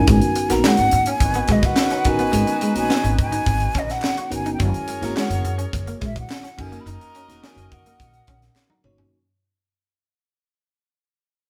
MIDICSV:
0, 0, Header, 1, 8, 480
1, 0, Start_track
1, 0, Key_signature, 5, "minor"
1, 0, Tempo, 565504
1, 66, Time_signature, 4, 2, 24, 8
1, 9753, End_track
2, 0, Start_track
2, 0, Title_t, "Flute"
2, 0, Program_c, 0, 73
2, 92, Note_on_c, 0, 80, 98
2, 446, Note_on_c, 0, 82, 94
2, 459, Note_off_c, 0, 80, 0
2, 566, Note_on_c, 0, 78, 99
2, 579, Note_off_c, 0, 82, 0
2, 931, Note_on_c, 0, 80, 97
2, 943, Note_off_c, 0, 78, 0
2, 1289, Note_on_c, 0, 75, 88
2, 1302, Note_off_c, 0, 80, 0
2, 1407, Note_on_c, 0, 78, 97
2, 1420, Note_off_c, 0, 75, 0
2, 1764, Note_on_c, 0, 80, 118
2, 1777, Note_off_c, 0, 78, 0
2, 2355, Note_off_c, 0, 80, 0
2, 2361, Note_on_c, 0, 80, 106
2, 2688, Note_off_c, 0, 80, 0
2, 2731, Note_on_c, 0, 80, 109
2, 3215, Note_on_c, 0, 75, 93
2, 3227, Note_off_c, 0, 80, 0
2, 3322, Note_on_c, 0, 78, 99
2, 3335, Note_off_c, 0, 75, 0
2, 3673, Note_off_c, 0, 78, 0
2, 3689, Note_on_c, 0, 80, 96
2, 3846, Note_off_c, 0, 80, 0
2, 3853, Note_on_c, 0, 79, 72
2, 3922, Note_on_c, 0, 80, 90
2, 3935, Note_off_c, 0, 79, 0
2, 4287, Note_on_c, 0, 82, 91
2, 4299, Note_off_c, 0, 80, 0
2, 4396, Note_off_c, 0, 82, 0
2, 4406, Note_on_c, 0, 78, 77
2, 4731, Note_off_c, 0, 78, 0
2, 5140, Note_on_c, 0, 76, 88
2, 5236, Note_off_c, 0, 76, 0
2, 5258, Note_on_c, 0, 78, 93
2, 5606, Note_on_c, 0, 80, 102
2, 5619, Note_off_c, 0, 78, 0
2, 5777, Note_on_c, 0, 83, 74
2, 5789, Note_off_c, 0, 80, 0
2, 5847, Note_on_c, 0, 82, 103
2, 5860, Note_off_c, 0, 83, 0
2, 6313, Note_off_c, 0, 82, 0
2, 6318, Note_on_c, 0, 80, 101
2, 6561, Note_on_c, 0, 78, 102
2, 6574, Note_off_c, 0, 80, 0
2, 7515, Note_off_c, 0, 78, 0
2, 9753, End_track
3, 0, Start_track
3, 0, Title_t, "Horn section"
3, 0, Program_c, 1, 61
3, 1035, Note_on_c, 1, 71, 94
3, 1037, Note_on_c, 1, 63, 90
3, 1038, Note_on_c, 1, 66, 81
3, 3636, Note_off_c, 1, 71, 0
3, 3637, Note_off_c, 1, 63, 0
3, 3637, Note_off_c, 1, 66, 0
3, 3907, Note_on_c, 1, 68, 83
3, 3907, Note_on_c, 1, 73, 98
3, 3909, Note_on_c, 1, 70, 83
3, 5318, Note_off_c, 1, 68, 0
3, 5318, Note_off_c, 1, 73, 0
3, 5319, Note_off_c, 1, 70, 0
3, 5592, Note_on_c, 1, 66, 85
3, 5594, Note_on_c, 1, 70, 90
3, 5594, Note_on_c, 1, 75, 95
3, 7476, Note_off_c, 1, 66, 0
3, 7477, Note_off_c, 1, 70, 0
3, 7477, Note_off_c, 1, 75, 0
3, 9753, End_track
4, 0, Start_track
4, 0, Title_t, "FM electric piano"
4, 0, Program_c, 2, 5
4, 0, Control_c, 2, 64, 127
4, 0, Note_on_c, 2, 70, 106
4, 57, Note_on_c, 2, 59, 78
4, 64, Note_on_c, 2, 61, 66
4, 64, Note_on_c, 2, 63, 69
4, 65, Note_on_c, 2, 66, 73
4, 67, Note_off_c, 2, 70, 0
4, 67, Note_on_c, 2, 70, 78
4, 78, Control_c, 2, 64, 0
4, 226, Control_c, 2, 64, 127
4, 291, Note_off_c, 2, 59, 0
4, 295, Note_off_c, 2, 61, 0
4, 295, Note_off_c, 2, 63, 0
4, 295, Note_off_c, 2, 66, 0
4, 296, Note_off_c, 2, 70, 0
4, 415, Note_on_c, 2, 58, 58
4, 417, Note_on_c, 2, 61, 66
4, 420, Note_on_c, 2, 63, 74
4, 421, Note_on_c, 2, 66, 75
4, 426, Note_on_c, 2, 70, 87
4, 474, Note_on_c, 2, 59, 77
4, 476, Note_off_c, 2, 58, 0
4, 1034, Note_off_c, 2, 61, 0
4, 1035, Note_off_c, 2, 63, 0
4, 1036, Note_off_c, 2, 66, 0
4, 1038, Note_off_c, 2, 70, 0
4, 1062, Note_off_c, 2, 59, 0
4, 1741, Note_on_c, 2, 59, 75
4, 1741, Note_on_c, 2, 61, 70
4, 1747, Note_on_c, 2, 63, 72
4, 1748, Note_on_c, 2, 70, 89
4, 1752, Note_on_c, 2, 66, 70
4, 1896, Note_off_c, 2, 59, 0
4, 1896, Note_off_c, 2, 61, 0
4, 1899, Note_off_c, 2, 63, 0
4, 1900, Note_off_c, 2, 70, 0
4, 1902, Note_off_c, 2, 66, 0
4, 1977, Note_on_c, 2, 61, 66
4, 1978, Note_on_c, 2, 59, 78
4, 1980, Note_on_c, 2, 63, 64
4, 1983, Note_on_c, 2, 66, 67
4, 1988, Note_on_c, 2, 70, 76
4, 2211, Note_off_c, 2, 59, 0
4, 2211, Note_off_c, 2, 61, 0
4, 2212, Note_off_c, 2, 63, 0
4, 2214, Note_off_c, 2, 66, 0
4, 2217, Note_off_c, 2, 70, 0
4, 2337, Note_on_c, 2, 58, 65
4, 2343, Note_on_c, 2, 63, 66
4, 2345, Note_on_c, 2, 61, 71
4, 2345, Note_on_c, 2, 66, 69
4, 2349, Note_on_c, 2, 82, 79
4, 2393, Note_on_c, 2, 59, 73
4, 2396, Note_off_c, 2, 58, 0
4, 2957, Note_off_c, 2, 63, 0
4, 2958, Note_off_c, 2, 61, 0
4, 2958, Note_off_c, 2, 66, 0
4, 2960, Note_off_c, 2, 82, 0
4, 2982, Note_off_c, 2, 59, 0
4, 3654, Note_on_c, 2, 59, 75
4, 3654, Note_on_c, 2, 63, 72
4, 3655, Note_on_c, 2, 61, 70
4, 3657, Note_on_c, 2, 66, 71
4, 3660, Note_on_c, 2, 70, 84
4, 3813, Note_off_c, 2, 59, 0
4, 3813, Note_off_c, 2, 61, 0
4, 3813, Note_off_c, 2, 63, 0
4, 3814, Note_off_c, 2, 66, 0
4, 3816, Note_off_c, 2, 70, 0
4, 3891, Note_on_c, 2, 56, 70
4, 3891, Note_on_c, 2, 61, 69
4, 3893, Note_on_c, 2, 64, 67
4, 3895, Note_on_c, 2, 66, 69
4, 3899, Note_on_c, 2, 70, 84
4, 3918, Control_c, 2, 64, 0
4, 4088, Control_c, 2, 64, 127
4, 4128, Note_off_c, 2, 56, 0
4, 4128, Note_off_c, 2, 61, 0
4, 4129, Note_off_c, 2, 64, 0
4, 4130, Note_off_c, 2, 66, 0
4, 4132, Note_off_c, 2, 70, 0
4, 4255, Note_on_c, 2, 56, 79
4, 4258, Note_on_c, 2, 61, 75
4, 4261, Note_on_c, 2, 64, 68
4, 4265, Note_on_c, 2, 66, 70
4, 4265, Note_on_c, 2, 73, 82
4, 4873, Note_off_c, 2, 56, 0
4, 4874, Note_off_c, 2, 61, 0
4, 4876, Note_off_c, 2, 64, 0
4, 4878, Note_off_c, 2, 66, 0
4, 4878, Note_off_c, 2, 73, 0
4, 5583, Note_on_c, 2, 58, 75
4, 5588, Note_on_c, 2, 61, 74
4, 5591, Note_on_c, 2, 63, 77
4, 5592, Note_on_c, 2, 66, 74
4, 5596, Control_c, 2, 64, 0
4, 5597, Note_on_c, 2, 69, 66
4, 5646, Note_off_c, 2, 69, 0
4, 5655, Note_on_c, 2, 70, 89
4, 5763, Control_c, 2, 64, 127
4, 6065, Note_off_c, 2, 58, 0
4, 6067, Note_off_c, 2, 61, 0
4, 6069, Note_off_c, 2, 63, 0
4, 6069, Note_off_c, 2, 66, 0
4, 6101, Note_off_c, 2, 70, 0
4, 6178, Note_on_c, 2, 58, 77
4, 6181, Note_on_c, 2, 63, 69
4, 6182, Note_on_c, 2, 61, 71
4, 6190, Note_on_c, 2, 66, 70
4, 6192, Note_on_c, 2, 70, 83
4, 6795, Note_off_c, 2, 58, 0
4, 6797, Note_off_c, 2, 61, 0
4, 6797, Note_off_c, 2, 63, 0
4, 6801, Note_off_c, 2, 66, 0
4, 6802, Note_off_c, 2, 70, 0
4, 7500, Note_on_c, 2, 58, 85
4, 7504, Note_on_c, 2, 61, 83
4, 7508, Note_on_c, 2, 63, 79
4, 7508, Note_on_c, 2, 66, 74
4, 7510, Note_on_c, 2, 73, 99
4, 7657, Note_off_c, 2, 58, 0
4, 7659, Note_off_c, 2, 61, 0
4, 7661, Note_off_c, 2, 63, 0
4, 7661, Note_off_c, 2, 66, 0
4, 7662, Note_off_c, 2, 73, 0
4, 7758, Control_c, 2, 64, 0
4, 9753, End_track
5, 0, Start_track
5, 0, Title_t, "Clean electric guitar"
5, 0, Program_c, 3, 27
5, 68, Note_on_c, 3, 56, 89
5, 166, Note_off_c, 3, 56, 0
5, 426, Note_on_c, 3, 59, 75
5, 525, Note_off_c, 3, 59, 0
5, 553, Note_on_c, 3, 56, 84
5, 649, Note_off_c, 3, 56, 0
5, 911, Note_on_c, 3, 61, 65
5, 1008, Note_off_c, 3, 61, 0
5, 1150, Note_on_c, 3, 59, 75
5, 1247, Note_off_c, 3, 59, 0
5, 1268, Note_on_c, 3, 56, 81
5, 1366, Note_off_c, 3, 56, 0
5, 1624, Note_on_c, 3, 61, 69
5, 1723, Note_off_c, 3, 61, 0
5, 1861, Note_on_c, 3, 59, 73
5, 1961, Note_off_c, 3, 59, 0
5, 1970, Note_on_c, 3, 56, 88
5, 2075, Note_off_c, 3, 56, 0
5, 2225, Note_on_c, 3, 56, 75
5, 2324, Note_off_c, 3, 56, 0
5, 2461, Note_on_c, 3, 59, 87
5, 2562, Note_off_c, 3, 59, 0
5, 2819, Note_on_c, 3, 63, 81
5, 2921, Note_off_c, 3, 63, 0
5, 3186, Note_on_c, 3, 61, 76
5, 3285, Note_off_c, 3, 61, 0
5, 3546, Note_on_c, 3, 66, 69
5, 3645, Note_off_c, 3, 66, 0
5, 3787, Note_on_c, 3, 63, 79
5, 3885, Note_off_c, 3, 63, 0
5, 3904, Note_on_c, 3, 54, 89
5, 4003, Note_off_c, 3, 54, 0
5, 4270, Note_on_c, 3, 58, 73
5, 4367, Note_off_c, 3, 58, 0
5, 4385, Note_on_c, 3, 56, 78
5, 4484, Note_off_c, 3, 56, 0
5, 4740, Note_on_c, 3, 61, 70
5, 4841, Note_off_c, 3, 61, 0
5, 4988, Note_on_c, 3, 58, 76
5, 5086, Note_off_c, 3, 58, 0
5, 5106, Note_on_c, 3, 56, 81
5, 5205, Note_off_c, 3, 56, 0
5, 5462, Note_on_c, 3, 61, 70
5, 5562, Note_off_c, 3, 61, 0
5, 5706, Note_on_c, 3, 58, 62
5, 5805, Note_off_c, 3, 58, 0
5, 5833, Note_on_c, 3, 63, 83
5, 5929, Note_off_c, 3, 63, 0
5, 6075, Note_on_c, 3, 61, 71
5, 6171, Note_off_c, 3, 61, 0
5, 6309, Note_on_c, 3, 61, 85
5, 6407, Note_off_c, 3, 61, 0
5, 6676, Note_on_c, 3, 58, 71
5, 6771, Note_off_c, 3, 58, 0
5, 7032, Note_on_c, 3, 61, 78
5, 7129, Note_off_c, 3, 61, 0
5, 7385, Note_on_c, 3, 63, 66
5, 7485, Note_off_c, 3, 63, 0
5, 7625, Note_on_c, 3, 61, 71
5, 7725, Note_off_c, 3, 61, 0
5, 9753, End_track
6, 0, Start_track
6, 0, Title_t, "Upright bass"
6, 0, Program_c, 4, 32
6, 63, Note_on_c, 4, 32, 99
6, 146, Note_off_c, 4, 32, 0
6, 426, Note_on_c, 4, 34, 90
6, 508, Note_off_c, 4, 34, 0
6, 668, Note_on_c, 4, 32, 96
6, 749, Note_off_c, 4, 32, 0
6, 786, Note_on_c, 4, 44, 97
6, 950, Note_off_c, 4, 44, 0
6, 1025, Note_on_c, 4, 32, 89
6, 1190, Note_off_c, 4, 32, 0
6, 1259, Note_on_c, 4, 35, 96
6, 1426, Note_off_c, 4, 35, 0
6, 1743, Note_on_c, 4, 33, 77
6, 1909, Note_off_c, 4, 33, 0
6, 1980, Note_on_c, 4, 32, 98
6, 2064, Note_off_c, 4, 32, 0
6, 2340, Note_on_c, 4, 34, 80
6, 2424, Note_off_c, 4, 34, 0
6, 2581, Note_on_c, 4, 32, 91
6, 2665, Note_off_c, 4, 32, 0
6, 2702, Note_on_c, 4, 44, 91
6, 2868, Note_off_c, 4, 44, 0
6, 2943, Note_on_c, 4, 32, 104
6, 3108, Note_off_c, 4, 32, 0
6, 3183, Note_on_c, 4, 34, 91
6, 3348, Note_off_c, 4, 34, 0
6, 3665, Note_on_c, 4, 31, 89
6, 3899, Note_off_c, 4, 31, 0
6, 3904, Note_on_c, 4, 30, 113
6, 3987, Note_off_c, 4, 30, 0
6, 4260, Note_on_c, 4, 32, 79
6, 4344, Note_off_c, 4, 32, 0
6, 4500, Note_on_c, 4, 30, 110
6, 4584, Note_off_c, 4, 30, 0
6, 4621, Note_on_c, 4, 42, 101
6, 4787, Note_off_c, 4, 42, 0
6, 4865, Note_on_c, 4, 30, 94
6, 5030, Note_off_c, 4, 30, 0
6, 5109, Note_on_c, 4, 34, 87
6, 5272, Note_off_c, 4, 34, 0
6, 5588, Note_on_c, 4, 30, 92
6, 5752, Note_off_c, 4, 30, 0
6, 5823, Note_on_c, 4, 30, 101
6, 5906, Note_off_c, 4, 30, 0
6, 6183, Note_on_c, 4, 28, 87
6, 6266, Note_off_c, 4, 28, 0
6, 6420, Note_on_c, 4, 30, 92
6, 6504, Note_off_c, 4, 30, 0
6, 6550, Note_on_c, 4, 42, 93
6, 6713, Note_off_c, 4, 42, 0
6, 6793, Note_on_c, 4, 34, 95
6, 6955, Note_off_c, 4, 34, 0
6, 7027, Note_on_c, 4, 34, 97
6, 7192, Note_off_c, 4, 34, 0
6, 7505, Note_on_c, 4, 31, 78
6, 7671, Note_off_c, 4, 31, 0
6, 9753, End_track
7, 0, Start_track
7, 0, Title_t, "Muted clean electric guitar strokes"
7, 306, Note_on_c, 9, 29, 44
7, 391, Note_off_c, 9, 29, 0
7, 787, Note_on_c, 9, 29, 46
7, 871, Note_off_c, 9, 29, 0
7, 1030, Note_on_c, 9, 29, 43
7, 1115, Note_off_c, 9, 29, 0
7, 1746, Note_on_c, 9, 29, 45
7, 1831, Note_off_c, 9, 29, 0
7, 2099, Note_on_c, 9, 29, 43
7, 2184, Note_off_c, 9, 29, 0
7, 2577, Note_on_c, 9, 29, 45
7, 2662, Note_off_c, 9, 29, 0
7, 3666, Note_on_c, 9, 29, 46
7, 3751, Note_off_c, 9, 29, 0
7, 4149, Note_on_c, 9, 29, 49
7, 4233, Note_off_c, 9, 29, 0
7, 4625, Note_on_c, 9, 29, 42
7, 4710, Note_off_c, 9, 29, 0
7, 4867, Note_on_c, 9, 29, 42
7, 4952, Note_off_c, 9, 29, 0
7, 5583, Note_on_c, 9, 29, 44
7, 5668, Note_off_c, 9, 29, 0
7, 5952, Note_on_c, 9, 29, 41
7, 6037, Note_off_c, 9, 29, 0
7, 6436, Note_on_c, 9, 29, 45
7, 6520, Note_off_c, 9, 29, 0
7, 7507, Note_on_c, 9, 29, 42
7, 7592, Note_off_c, 9, 29, 0
7, 9753, End_track
8, 0, Start_track
8, 0, Title_t, "Drums"
8, 63, Note_on_c, 9, 42, 99
8, 65, Note_on_c, 9, 36, 123
8, 147, Note_off_c, 9, 42, 0
8, 150, Note_off_c, 9, 36, 0
8, 182, Note_on_c, 9, 42, 46
8, 267, Note_off_c, 9, 42, 0
8, 301, Note_on_c, 9, 42, 76
8, 386, Note_off_c, 9, 42, 0
8, 423, Note_on_c, 9, 42, 60
8, 427, Note_on_c, 9, 38, 37
8, 507, Note_off_c, 9, 42, 0
8, 511, Note_off_c, 9, 38, 0
8, 543, Note_on_c, 9, 38, 119
8, 552, Note_on_c, 9, 39, 89
8, 628, Note_off_c, 9, 38, 0
8, 637, Note_off_c, 9, 39, 0
8, 655, Note_on_c, 9, 42, 60
8, 740, Note_off_c, 9, 42, 0
8, 776, Note_on_c, 9, 42, 66
8, 861, Note_off_c, 9, 42, 0
8, 898, Note_on_c, 9, 42, 62
8, 983, Note_off_c, 9, 42, 0
8, 1022, Note_on_c, 9, 36, 102
8, 1024, Note_on_c, 9, 42, 99
8, 1107, Note_off_c, 9, 36, 0
8, 1109, Note_off_c, 9, 42, 0
8, 1136, Note_on_c, 9, 42, 49
8, 1221, Note_off_c, 9, 42, 0
8, 1253, Note_on_c, 9, 42, 70
8, 1262, Note_on_c, 9, 36, 89
8, 1263, Note_on_c, 9, 38, 34
8, 1338, Note_off_c, 9, 42, 0
8, 1347, Note_off_c, 9, 36, 0
8, 1348, Note_off_c, 9, 38, 0
8, 1381, Note_on_c, 9, 38, 38
8, 1381, Note_on_c, 9, 42, 52
8, 1382, Note_on_c, 9, 36, 91
8, 1466, Note_off_c, 9, 38, 0
8, 1466, Note_off_c, 9, 42, 0
8, 1467, Note_off_c, 9, 36, 0
8, 1495, Note_on_c, 9, 38, 106
8, 1500, Note_on_c, 9, 39, 83
8, 1580, Note_off_c, 9, 38, 0
8, 1584, Note_off_c, 9, 39, 0
8, 1615, Note_on_c, 9, 42, 48
8, 1621, Note_on_c, 9, 38, 32
8, 1700, Note_off_c, 9, 42, 0
8, 1705, Note_off_c, 9, 38, 0
8, 1736, Note_on_c, 9, 42, 77
8, 1741, Note_on_c, 9, 36, 92
8, 1821, Note_off_c, 9, 42, 0
8, 1826, Note_off_c, 9, 36, 0
8, 1858, Note_on_c, 9, 42, 46
8, 1943, Note_off_c, 9, 42, 0
8, 1977, Note_on_c, 9, 42, 105
8, 2062, Note_off_c, 9, 42, 0
8, 2099, Note_on_c, 9, 42, 47
8, 2184, Note_off_c, 9, 42, 0
8, 2217, Note_on_c, 9, 42, 77
8, 2302, Note_off_c, 9, 42, 0
8, 2340, Note_on_c, 9, 42, 58
8, 2425, Note_off_c, 9, 42, 0
8, 2465, Note_on_c, 9, 38, 116
8, 2471, Note_on_c, 9, 39, 82
8, 2550, Note_off_c, 9, 38, 0
8, 2556, Note_off_c, 9, 39, 0
8, 2584, Note_on_c, 9, 42, 59
8, 2669, Note_off_c, 9, 42, 0
8, 2704, Note_on_c, 9, 36, 101
8, 2704, Note_on_c, 9, 42, 67
8, 2789, Note_off_c, 9, 36, 0
8, 2789, Note_off_c, 9, 42, 0
8, 2822, Note_on_c, 9, 42, 66
8, 2907, Note_off_c, 9, 42, 0
8, 2940, Note_on_c, 9, 36, 101
8, 2944, Note_on_c, 9, 42, 91
8, 3025, Note_off_c, 9, 36, 0
8, 3029, Note_off_c, 9, 42, 0
8, 3058, Note_on_c, 9, 42, 50
8, 3143, Note_off_c, 9, 42, 0
8, 3180, Note_on_c, 9, 42, 78
8, 3183, Note_on_c, 9, 36, 93
8, 3264, Note_off_c, 9, 42, 0
8, 3268, Note_off_c, 9, 36, 0
8, 3308, Note_on_c, 9, 38, 36
8, 3308, Note_on_c, 9, 42, 53
8, 3393, Note_off_c, 9, 38, 0
8, 3393, Note_off_c, 9, 42, 0
8, 3414, Note_on_c, 9, 39, 82
8, 3428, Note_on_c, 9, 38, 108
8, 3499, Note_off_c, 9, 39, 0
8, 3513, Note_off_c, 9, 38, 0
8, 3543, Note_on_c, 9, 42, 49
8, 3628, Note_off_c, 9, 42, 0
8, 3663, Note_on_c, 9, 42, 78
8, 3748, Note_off_c, 9, 42, 0
8, 3785, Note_on_c, 9, 42, 44
8, 3870, Note_off_c, 9, 42, 0
8, 3902, Note_on_c, 9, 42, 94
8, 3904, Note_on_c, 9, 36, 112
8, 3987, Note_off_c, 9, 42, 0
8, 3989, Note_off_c, 9, 36, 0
8, 4025, Note_on_c, 9, 42, 49
8, 4110, Note_off_c, 9, 42, 0
8, 4140, Note_on_c, 9, 42, 82
8, 4225, Note_off_c, 9, 42, 0
8, 4266, Note_on_c, 9, 42, 56
8, 4270, Note_on_c, 9, 38, 38
8, 4351, Note_off_c, 9, 42, 0
8, 4355, Note_off_c, 9, 38, 0
8, 4386, Note_on_c, 9, 39, 88
8, 4388, Note_on_c, 9, 38, 115
8, 4471, Note_off_c, 9, 39, 0
8, 4473, Note_off_c, 9, 38, 0
8, 4504, Note_on_c, 9, 42, 64
8, 4589, Note_off_c, 9, 42, 0
8, 4625, Note_on_c, 9, 42, 66
8, 4709, Note_off_c, 9, 42, 0
8, 4743, Note_on_c, 9, 42, 61
8, 4827, Note_off_c, 9, 42, 0
8, 4866, Note_on_c, 9, 36, 105
8, 4871, Note_on_c, 9, 42, 93
8, 4951, Note_off_c, 9, 36, 0
8, 4956, Note_off_c, 9, 42, 0
8, 4985, Note_on_c, 9, 42, 51
8, 5070, Note_off_c, 9, 42, 0
8, 5105, Note_on_c, 9, 42, 73
8, 5108, Note_on_c, 9, 36, 88
8, 5115, Note_on_c, 9, 38, 34
8, 5190, Note_off_c, 9, 42, 0
8, 5193, Note_off_c, 9, 36, 0
8, 5200, Note_off_c, 9, 38, 0
8, 5228, Note_on_c, 9, 36, 89
8, 5231, Note_on_c, 9, 42, 52
8, 5313, Note_off_c, 9, 36, 0
8, 5316, Note_off_c, 9, 42, 0
8, 5347, Note_on_c, 9, 39, 85
8, 5353, Note_on_c, 9, 38, 113
8, 5432, Note_off_c, 9, 39, 0
8, 5438, Note_off_c, 9, 38, 0
8, 5471, Note_on_c, 9, 42, 52
8, 5476, Note_on_c, 9, 38, 37
8, 5556, Note_off_c, 9, 42, 0
8, 5561, Note_off_c, 9, 38, 0
8, 5588, Note_on_c, 9, 49, 72
8, 5590, Note_on_c, 9, 36, 102
8, 5673, Note_off_c, 9, 49, 0
8, 5674, Note_off_c, 9, 36, 0
8, 5708, Note_on_c, 9, 42, 47
8, 5793, Note_off_c, 9, 42, 0
8, 5830, Note_on_c, 9, 42, 93
8, 5915, Note_off_c, 9, 42, 0
8, 5952, Note_on_c, 9, 42, 47
8, 6037, Note_off_c, 9, 42, 0
8, 6068, Note_on_c, 9, 42, 81
8, 6152, Note_off_c, 9, 42, 0
8, 6193, Note_on_c, 9, 42, 58
8, 6197, Note_on_c, 9, 38, 39
8, 6278, Note_off_c, 9, 42, 0
8, 6282, Note_off_c, 9, 38, 0
8, 6312, Note_on_c, 9, 38, 118
8, 6321, Note_on_c, 9, 39, 85
8, 6397, Note_off_c, 9, 38, 0
8, 6406, Note_off_c, 9, 39, 0
8, 6431, Note_on_c, 9, 42, 56
8, 6516, Note_off_c, 9, 42, 0
8, 6550, Note_on_c, 9, 42, 63
8, 6551, Note_on_c, 9, 36, 101
8, 6635, Note_off_c, 9, 42, 0
8, 6636, Note_off_c, 9, 36, 0
8, 6673, Note_on_c, 9, 42, 61
8, 6758, Note_off_c, 9, 42, 0
8, 6789, Note_on_c, 9, 36, 90
8, 6792, Note_on_c, 9, 42, 94
8, 6874, Note_off_c, 9, 36, 0
8, 6877, Note_off_c, 9, 42, 0
8, 6906, Note_on_c, 9, 42, 45
8, 6991, Note_off_c, 9, 42, 0
8, 7023, Note_on_c, 9, 42, 70
8, 7028, Note_on_c, 9, 36, 93
8, 7107, Note_off_c, 9, 42, 0
8, 7113, Note_off_c, 9, 36, 0
8, 7149, Note_on_c, 9, 38, 36
8, 7149, Note_on_c, 9, 42, 50
8, 7234, Note_off_c, 9, 38, 0
8, 7234, Note_off_c, 9, 42, 0
8, 7264, Note_on_c, 9, 38, 58
8, 7264, Note_on_c, 9, 39, 83
8, 7349, Note_off_c, 9, 38, 0
8, 7349, Note_off_c, 9, 39, 0
8, 7382, Note_on_c, 9, 48, 61
8, 7467, Note_off_c, 9, 48, 0
8, 7504, Note_on_c, 9, 45, 84
8, 7589, Note_off_c, 9, 45, 0
8, 7625, Note_on_c, 9, 43, 76
8, 7710, Note_off_c, 9, 43, 0
8, 9753, End_track
0, 0, End_of_file